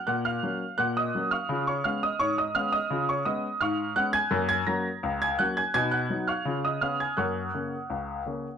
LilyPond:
<<
  \new Staff \with { instrumentName = "Upright piano" } { \time 2/4 \key fis \major \tempo 4 = 84 <fis'' fis'''>16 <eis'' eis'''>8. <fis'' fis'''>16 <dis'' dis'''>8 <eis'' cis''' eis'''>16~ | <eis'' cis''' eis'''>16 <cis'' cis'''>16 <eis'' eis'''>16 <dis'' dis'''>16 <cis'' cis'''>16 <dis'' dis'''>16 <eis'' eis'''>16 <dis'' dis'''>16~ | <dis'' dis'''>16 <cis'' cis'''>16 <dis'' dis'''>8 <eis'' cis''' eis'''>8 <fis'' fis'''>16 <gis'' gis'''>16~ | <gis'' gis'''>16 <gis'' gis'''>16 <ais'' ais'''>8. <gis'' gis'''>16 <fis'' fis'''>16 <gis'' gis'''>16 |
<gis'' gis'''>16 <fis'' fis'''>8 <eis'' cis''' eis'''>8 <dis'' dis'''>16 <eis'' eis'''>16 <gis'' gis'''>16 | <fis'' cis''' fis'''>2 | }
  \new Staff \with { instrumentName = "Upright piano" } { \time 2/4 \key fis \major ais,8 <fis ais cis'>8 ais,8 <fis ais cis'>8 | <cis eis'>8 <gis b cis'>8 gis,8 <gis b cis'>8 | <cis eis'>8 <gis b cis'>8 gis,8 <gis b cis'>8 | <fis, ais>8 <fis ais cis'>8 cis,8 <fis ais cis'>8 |
<b, dis'>8 <fis b dis'>8 <cis eis'>8 <cis b cis'>8 | <fis, ais>8 <cis ais cis'>8 cis,8 <cis ais cis'>8 | }
>>